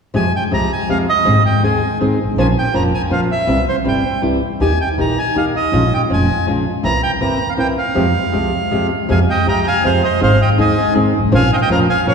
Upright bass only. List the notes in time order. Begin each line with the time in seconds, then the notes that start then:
0.15 F2
0.52 C2
0.89 F2
1.26 G#1
1.63 D#2
2.01 G#1
2.24 G1 G#1
2.32 A1
2.36 A#1
2.73 F1
3.11 A#1
3.47 C2
3.85 G1
4.23 C2
4.60 D#2
4.98 A#1
5.35 D#2
5.72 A#1
6.10 F1
6.47 A#1
6.84 C2
7.21 G1
7.59 C2
7.96 F2
8.34 C2
8.72 F2
9.10 F2
9.47 C2
9.85 F2
10.22 G#1
10.58 D#2
10.96 G#1
11.19 G1
11.23 G#1 A1
11.32 A#1
11.69 F1
12.05 A#1